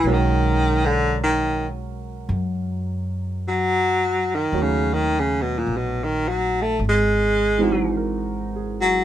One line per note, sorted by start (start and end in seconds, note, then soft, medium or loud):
0.00 2.24 B1 medium
0.00 0.15 E3 medium
0.06 4.52 F#3 soft
0.06 4.55 G#3 soft
0.06 4.52 C#4 medium
0.06 4.53 F#4 soft
0.06 4.55 A#4 medium
0.13 0.87 D#3 medium
0.85 1.18 D3 medium
1.23 1.67 D#3 medium
2.29 4.49 F#2 medium
3.48 4.37 F#3 loud
4.35 4.63 D#3 medium
4.52 5.62 D#2 medium
4.52 6.80 F#3 medium
4.52 6.80 A3 soft
4.52 6.80 C#4 soft
4.52 6.81 D#4 soft
4.52 6.80 F#4 medium
4.62 4.95 C#3 medium
4.93 5.21 D#3 medium
5.19 5.43 C#3 medium
5.42 5.60 B2 medium
5.59 5.78 A#2 medium
5.67 6.76 A#1 medium
5.77 6.05 B2 medium
6.04 6.30 D#3 medium
6.29 6.63 F#3 medium
6.62 6.80 A3 medium
6.79 9.04 G#1 medium
6.89 7.95 G#3 medium
7.58 9.04 E3 medium
7.58 9.04 G#3 medium
7.58 9.04 C4 soft
7.58 9.04 D#4 medium
7.62 9.04 F#4 medium
7.97 8.89 A#4 soft
8.56 9.04 G#4 soft
8.81 9.04 F#3 medium